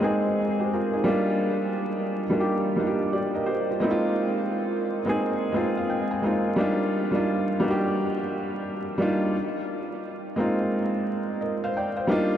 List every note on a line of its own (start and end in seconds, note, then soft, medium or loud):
0.00 1.08 G#3 medium
0.00 1.05 A#3 medium
0.00 0.02 C4 medium
0.00 0.69 C4 medium
0.00 1.06 D4 soft
0.00 0.03 D#4 medium
0.00 0.37 D#4 medium
0.00 0.74 F4 medium
0.00 0.60 G4 soft
0.00 0.04 G#4 medium
0.04 0.38 G#4 medium
0.60 0.72 G4 soft
0.60 0.71 C5 soft
0.73 0.94 F4 medium
0.73 0.93 A#4 medium
0.93 1.05 D#4 soft
0.93 1.26 G#4 medium
1.04 2.22 G3 medium
1.04 2.23 A#3 medium
1.04 2.23 D4 medium
1.04 2.24 D#4 medium
1.08 2.24 F4 medium
2.30 2.75 G3 medium
2.30 2.76 A#3 medium
2.30 2.77 D4 medium
2.30 2.77 D#4 medium
2.30 2.37 F4 medium
2.40 2.81 G4 medium
2.76 3.77 G3 medium
2.76 3.77 A#3 medium
2.76 3.78 D4 medium
2.76 3.79 D#4 medium
2.80 2.88 F4 medium
2.87 3.12 G4 medium
3.13 3.34 G4 soft
3.13 3.34 D5 medium
3.35 3.47 A#4 medium
3.35 3.47 D#5 medium
3.46 3.68 G4 medium
3.46 3.68 C5 medium
3.70 3.89 F4 soft
3.70 4.03 A#4 medium
3.80 4.98 G#3 medium
3.80 4.99 A#3 medium
3.80 5.00 C4 medium
3.80 5.00 D#4 medium
3.84 3.91 E4 medium
3.91 5.04 F4 loud
5.05 5.51 G#3 medium
5.05 5.52 A#3 medium
5.05 5.52 C4 medium
5.05 5.53 D#4 medium
5.09 5.53 G#4 medium
5.52 6.20 G#3 medium
5.52 6.20 A#3 medium
5.52 6.21 C4 medium
5.52 6.21 D#4 medium
5.52 5.75 D#5 medium
5.56 6.22 F4 medium
5.77 5.89 F5 medium
5.90 6.10 G5 medium
6.11 6.55 G#5 medium
6.22 6.56 G#3 medium
6.22 6.56 A#3 medium
6.22 6.57 C4 medium
6.22 6.57 D#4 medium
6.26 6.58 F4 medium
6.56 7.10 G3 medium
6.56 7.10 A#3 medium
6.56 7.11 D4 medium
6.56 7.12 D#4 medium
6.60 7.12 F4 loud
7.11 7.58 G3 medium
7.11 7.59 A#3 medium
7.11 7.59 D4 medium
7.11 7.60 D#4 medium
7.16 7.60 F4 medium
7.60 8.93 G3 medium
7.60 8.94 A#3 medium
7.60 8.94 D4 medium
7.60 8.95 D#4 medium
7.64 7.71 F#4 medium
7.71 8.99 G4 loud
8.98 9.33 G3 medium
8.98 9.34 A#3 medium
8.98 9.34 D4 medium
8.98 9.35 D#4 medium
9.02 9.35 F4 medium
10.36 11.69 G#3 medium
10.36 11.70 A#3 medium
10.36 11.70 C4 medium
10.36 11.71 D#4 medium
10.40 11.71 F4 medium
11.41 11.62 A#4 medium
11.41 11.62 D#5 medium
11.64 11.76 C5 medium
11.64 11.75 F5 medium
11.77 11.97 D5 medium
11.77 11.97 G5 medium
11.96 12.30 C5 medium
11.96 12.29 F5 medium
12.07 12.37 G3 medium
12.07 12.37 A#3 loud
12.07 12.37 D4 medium
12.07 12.37 D#4 loud
12.12 12.37 F4 loud